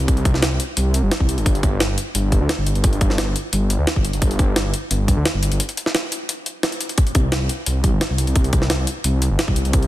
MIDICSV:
0, 0, Header, 1, 3, 480
1, 0, Start_track
1, 0, Tempo, 344828
1, 113, Time_signature, 4, 2, 24, 8
1, 13740, End_track
2, 0, Start_track
2, 0, Title_t, "Detuned saw bass"
2, 0, Program_c, 0, 39
2, 0, Note_on_c, 0, 36, 78
2, 333, Note_off_c, 0, 36, 0
2, 351, Note_on_c, 0, 36, 102
2, 696, Note_off_c, 0, 36, 0
2, 712, Note_on_c, 0, 36, 86
2, 819, Note_off_c, 0, 36, 0
2, 1069, Note_on_c, 0, 36, 83
2, 1415, Note_off_c, 0, 36, 0
2, 1431, Note_on_c, 0, 31, 99
2, 1539, Note_off_c, 0, 31, 0
2, 1676, Note_on_c, 0, 36, 90
2, 1912, Note_on_c, 0, 31, 78
2, 1933, Note_off_c, 0, 36, 0
2, 2252, Note_off_c, 0, 31, 0
2, 2271, Note_on_c, 0, 31, 100
2, 2616, Note_off_c, 0, 31, 0
2, 2632, Note_on_c, 0, 31, 85
2, 2739, Note_off_c, 0, 31, 0
2, 2988, Note_on_c, 0, 31, 84
2, 3335, Note_off_c, 0, 31, 0
2, 3353, Note_on_c, 0, 38, 102
2, 3460, Note_off_c, 0, 38, 0
2, 3592, Note_on_c, 0, 31, 88
2, 3809, Note_off_c, 0, 31, 0
2, 3833, Note_on_c, 0, 31, 76
2, 4172, Note_off_c, 0, 31, 0
2, 4191, Note_on_c, 0, 31, 101
2, 4536, Note_off_c, 0, 31, 0
2, 4554, Note_on_c, 0, 31, 85
2, 4660, Note_off_c, 0, 31, 0
2, 4910, Note_on_c, 0, 31, 82
2, 5255, Note_off_c, 0, 31, 0
2, 5271, Note_on_c, 0, 38, 98
2, 5379, Note_off_c, 0, 38, 0
2, 5515, Note_on_c, 0, 31, 89
2, 5731, Note_off_c, 0, 31, 0
2, 5753, Note_on_c, 0, 31, 81
2, 6092, Note_off_c, 0, 31, 0
2, 6112, Note_on_c, 0, 31, 101
2, 6457, Note_off_c, 0, 31, 0
2, 6473, Note_on_c, 0, 31, 85
2, 6579, Note_off_c, 0, 31, 0
2, 6829, Note_on_c, 0, 31, 84
2, 7175, Note_off_c, 0, 31, 0
2, 7191, Note_on_c, 0, 38, 103
2, 7299, Note_off_c, 0, 38, 0
2, 7436, Note_on_c, 0, 31, 91
2, 7652, Note_off_c, 0, 31, 0
2, 7678, Note_on_c, 0, 31, 80
2, 7794, Note_off_c, 0, 31, 0
2, 9954, Note_on_c, 0, 36, 102
2, 10297, Note_off_c, 0, 36, 0
2, 10317, Note_on_c, 0, 36, 86
2, 10422, Note_off_c, 0, 36, 0
2, 10676, Note_on_c, 0, 36, 82
2, 11018, Note_off_c, 0, 36, 0
2, 11036, Note_on_c, 0, 31, 99
2, 11141, Note_off_c, 0, 31, 0
2, 11278, Note_on_c, 0, 36, 89
2, 11493, Note_off_c, 0, 36, 0
2, 11515, Note_on_c, 0, 36, 82
2, 11854, Note_off_c, 0, 36, 0
2, 11871, Note_on_c, 0, 36, 103
2, 12216, Note_off_c, 0, 36, 0
2, 12232, Note_on_c, 0, 36, 89
2, 12339, Note_off_c, 0, 36, 0
2, 12586, Note_on_c, 0, 36, 85
2, 12933, Note_off_c, 0, 36, 0
2, 12952, Note_on_c, 0, 31, 102
2, 13059, Note_off_c, 0, 31, 0
2, 13195, Note_on_c, 0, 36, 89
2, 13411, Note_off_c, 0, 36, 0
2, 13436, Note_on_c, 0, 36, 80
2, 13740, Note_off_c, 0, 36, 0
2, 13740, End_track
3, 0, Start_track
3, 0, Title_t, "Drums"
3, 113, Note_on_c, 9, 36, 117
3, 114, Note_on_c, 9, 42, 84
3, 236, Note_off_c, 9, 42, 0
3, 236, Note_on_c, 9, 42, 34
3, 253, Note_off_c, 9, 36, 0
3, 352, Note_off_c, 9, 42, 0
3, 352, Note_on_c, 9, 36, 105
3, 352, Note_on_c, 9, 42, 60
3, 477, Note_on_c, 9, 38, 36
3, 491, Note_off_c, 9, 42, 0
3, 492, Note_off_c, 9, 36, 0
3, 591, Note_off_c, 9, 38, 0
3, 591, Note_on_c, 9, 38, 120
3, 591, Note_on_c, 9, 42, 86
3, 731, Note_off_c, 9, 38, 0
3, 731, Note_off_c, 9, 42, 0
3, 832, Note_on_c, 9, 42, 61
3, 971, Note_off_c, 9, 42, 0
3, 1070, Note_on_c, 9, 42, 85
3, 1209, Note_off_c, 9, 42, 0
3, 1311, Note_on_c, 9, 42, 59
3, 1450, Note_off_c, 9, 42, 0
3, 1552, Note_on_c, 9, 38, 113
3, 1552, Note_on_c, 9, 42, 84
3, 1676, Note_on_c, 9, 36, 63
3, 1691, Note_off_c, 9, 38, 0
3, 1691, Note_off_c, 9, 42, 0
3, 1793, Note_on_c, 9, 42, 60
3, 1815, Note_off_c, 9, 36, 0
3, 1919, Note_off_c, 9, 42, 0
3, 1919, Note_on_c, 9, 42, 32
3, 2031, Note_on_c, 9, 36, 108
3, 2034, Note_off_c, 9, 42, 0
3, 2034, Note_on_c, 9, 42, 87
3, 2159, Note_off_c, 9, 42, 0
3, 2159, Note_on_c, 9, 42, 33
3, 2171, Note_off_c, 9, 36, 0
3, 2271, Note_on_c, 9, 36, 101
3, 2272, Note_off_c, 9, 42, 0
3, 2272, Note_on_c, 9, 42, 60
3, 2411, Note_off_c, 9, 36, 0
3, 2411, Note_off_c, 9, 42, 0
3, 2511, Note_on_c, 9, 38, 111
3, 2511, Note_on_c, 9, 42, 86
3, 2650, Note_off_c, 9, 38, 0
3, 2650, Note_off_c, 9, 42, 0
3, 2752, Note_on_c, 9, 42, 60
3, 2892, Note_off_c, 9, 42, 0
3, 2991, Note_on_c, 9, 42, 87
3, 3130, Note_off_c, 9, 42, 0
3, 3231, Note_on_c, 9, 36, 57
3, 3231, Note_on_c, 9, 42, 58
3, 3370, Note_off_c, 9, 36, 0
3, 3370, Note_off_c, 9, 42, 0
3, 3471, Note_on_c, 9, 38, 108
3, 3471, Note_on_c, 9, 42, 82
3, 3610, Note_off_c, 9, 38, 0
3, 3610, Note_off_c, 9, 42, 0
3, 3710, Note_on_c, 9, 42, 62
3, 3834, Note_off_c, 9, 42, 0
3, 3834, Note_on_c, 9, 42, 31
3, 3950, Note_off_c, 9, 42, 0
3, 3950, Note_on_c, 9, 42, 88
3, 3951, Note_on_c, 9, 36, 109
3, 4075, Note_off_c, 9, 42, 0
3, 4075, Note_on_c, 9, 42, 35
3, 4091, Note_off_c, 9, 36, 0
3, 4190, Note_off_c, 9, 42, 0
3, 4190, Note_on_c, 9, 42, 61
3, 4192, Note_on_c, 9, 36, 99
3, 4317, Note_on_c, 9, 38, 35
3, 4330, Note_off_c, 9, 42, 0
3, 4331, Note_off_c, 9, 36, 0
3, 4430, Note_off_c, 9, 38, 0
3, 4430, Note_on_c, 9, 38, 109
3, 4430, Note_on_c, 9, 42, 89
3, 4570, Note_off_c, 9, 38, 0
3, 4570, Note_off_c, 9, 42, 0
3, 4673, Note_on_c, 9, 42, 62
3, 4813, Note_off_c, 9, 42, 0
3, 4911, Note_on_c, 9, 42, 88
3, 5050, Note_off_c, 9, 42, 0
3, 5151, Note_on_c, 9, 42, 62
3, 5291, Note_off_c, 9, 42, 0
3, 5390, Note_on_c, 9, 38, 107
3, 5390, Note_on_c, 9, 42, 88
3, 5516, Note_on_c, 9, 36, 56
3, 5529, Note_off_c, 9, 38, 0
3, 5529, Note_off_c, 9, 42, 0
3, 5631, Note_on_c, 9, 42, 63
3, 5655, Note_off_c, 9, 36, 0
3, 5755, Note_off_c, 9, 42, 0
3, 5755, Note_on_c, 9, 42, 34
3, 5872, Note_off_c, 9, 42, 0
3, 5872, Note_on_c, 9, 42, 91
3, 5873, Note_on_c, 9, 36, 103
3, 5997, Note_off_c, 9, 42, 0
3, 5997, Note_on_c, 9, 42, 37
3, 6012, Note_off_c, 9, 36, 0
3, 6113, Note_off_c, 9, 42, 0
3, 6113, Note_on_c, 9, 36, 102
3, 6113, Note_on_c, 9, 42, 64
3, 6252, Note_off_c, 9, 36, 0
3, 6252, Note_off_c, 9, 42, 0
3, 6350, Note_on_c, 9, 38, 108
3, 6350, Note_on_c, 9, 42, 93
3, 6489, Note_off_c, 9, 38, 0
3, 6489, Note_off_c, 9, 42, 0
3, 6592, Note_on_c, 9, 42, 65
3, 6732, Note_off_c, 9, 42, 0
3, 6832, Note_on_c, 9, 42, 92
3, 6971, Note_off_c, 9, 42, 0
3, 7073, Note_on_c, 9, 36, 56
3, 7075, Note_on_c, 9, 42, 64
3, 7213, Note_off_c, 9, 36, 0
3, 7214, Note_off_c, 9, 42, 0
3, 7315, Note_on_c, 9, 38, 105
3, 7315, Note_on_c, 9, 42, 88
3, 7454, Note_off_c, 9, 38, 0
3, 7454, Note_off_c, 9, 42, 0
3, 7553, Note_on_c, 9, 42, 63
3, 7678, Note_off_c, 9, 42, 0
3, 7678, Note_on_c, 9, 42, 36
3, 7794, Note_off_c, 9, 42, 0
3, 7794, Note_on_c, 9, 42, 96
3, 7918, Note_off_c, 9, 42, 0
3, 7918, Note_on_c, 9, 42, 37
3, 8037, Note_off_c, 9, 42, 0
3, 8037, Note_on_c, 9, 42, 65
3, 8160, Note_on_c, 9, 38, 36
3, 8176, Note_off_c, 9, 42, 0
3, 8276, Note_off_c, 9, 38, 0
3, 8276, Note_on_c, 9, 38, 111
3, 8276, Note_on_c, 9, 42, 95
3, 8416, Note_off_c, 9, 38, 0
3, 8416, Note_off_c, 9, 42, 0
3, 8518, Note_on_c, 9, 42, 67
3, 8657, Note_off_c, 9, 42, 0
3, 8756, Note_on_c, 9, 42, 95
3, 8895, Note_off_c, 9, 42, 0
3, 8994, Note_on_c, 9, 42, 64
3, 9133, Note_off_c, 9, 42, 0
3, 9232, Note_on_c, 9, 38, 107
3, 9232, Note_on_c, 9, 42, 91
3, 9358, Note_off_c, 9, 42, 0
3, 9358, Note_on_c, 9, 42, 37
3, 9372, Note_off_c, 9, 38, 0
3, 9473, Note_off_c, 9, 42, 0
3, 9473, Note_on_c, 9, 42, 66
3, 9595, Note_off_c, 9, 42, 0
3, 9595, Note_on_c, 9, 42, 36
3, 9711, Note_off_c, 9, 42, 0
3, 9711, Note_on_c, 9, 42, 92
3, 9714, Note_on_c, 9, 36, 114
3, 9836, Note_off_c, 9, 42, 0
3, 9836, Note_on_c, 9, 42, 37
3, 9853, Note_off_c, 9, 36, 0
3, 9951, Note_off_c, 9, 42, 0
3, 9951, Note_on_c, 9, 42, 65
3, 9954, Note_on_c, 9, 36, 104
3, 10090, Note_off_c, 9, 42, 0
3, 10093, Note_off_c, 9, 36, 0
3, 10190, Note_on_c, 9, 38, 116
3, 10190, Note_on_c, 9, 42, 95
3, 10329, Note_off_c, 9, 38, 0
3, 10329, Note_off_c, 9, 42, 0
3, 10431, Note_on_c, 9, 42, 66
3, 10570, Note_off_c, 9, 42, 0
3, 10669, Note_on_c, 9, 42, 96
3, 10808, Note_off_c, 9, 42, 0
3, 10911, Note_on_c, 9, 42, 65
3, 10913, Note_on_c, 9, 36, 59
3, 11050, Note_off_c, 9, 42, 0
3, 11052, Note_off_c, 9, 36, 0
3, 11151, Note_on_c, 9, 38, 112
3, 11151, Note_on_c, 9, 42, 93
3, 11290, Note_off_c, 9, 38, 0
3, 11290, Note_off_c, 9, 42, 0
3, 11392, Note_on_c, 9, 42, 65
3, 11516, Note_off_c, 9, 42, 0
3, 11516, Note_on_c, 9, 42, 36
3, 11631, Note_off_c, 9, 42, 0
3, 11631, Note_on_c, 9, 42, 93
3, 11632, Note_on_c, 9, 36, 114
3, 11754, Note_off_c, 9, 42, 0
3, 11754, Note_on_c, 9, 42, 35
3, 11771, Note_off_c, 9, 36, 0
3, 11871, Note_off_c, 9, 42, 0
3, 11871, Note_on_c, 9, 42, 65
3, 11872, Note_on_c, 9, 36, 109
3, 11995, Note_on_c, 9, 38, 38
3, 12010, Note_off_c, 9, 42, 0
3, 12012, Note_off_c, 9, 36, 0
3, 12109, Note_off_c, 9, 38, 0
3, 12109, Note_on_c, 9, 38, 117
3, 12109, Note_on_c, 9, 42, 92
3, 12248, Note_off_c, 9, 38, 0
3, 12248, Note_off_c, 9, 42, 0
3, 12350, Note_on_c, 9, 42, 64
3, 12489, Note_off_c, 9, 42, 0
3, 12587, Note_on_c, 9, 42, 91
3, 12727, Note_off_c, 9, 42, 0
3, 12832, Note_on_c, 9, 42, 65
3, 12971, Note_off_c, 9, 42, 0
3, 13070, Note_on_c, 9, 38, 113
3, 13070, Note_on_c, 9, 42, 92
3, 13195, Note_on_c, 9, 36, 64
3, 13209, Note_off_c, 9, 38, 0
3, 13209, Note_off_c, 9, 42, 0
3, 13309, Note_on_c, 9, 42, 64
3, 13334, Note_off_c, 9, 36, 0
3, 13434, Note_off_c, 9, 42, 0
3, 13434, Note_on_c, 9, 42, 35
3, 13549, Note_off_c, 9, 42, 0
3, 13549, Note_on_c, 9, 42, 90
3, 13551, Note_on_c, 9, 36, 118
3, 13677, Note_off_c, 9, 42, 0
3, 13677, Note_on_c, 9, 42, 35
3, 13690, Note_off_c, 9, 36, 0
3, 13740, Note_off_c, 9, 42, 0
3, 13740, End_track
0, 0, End_of_file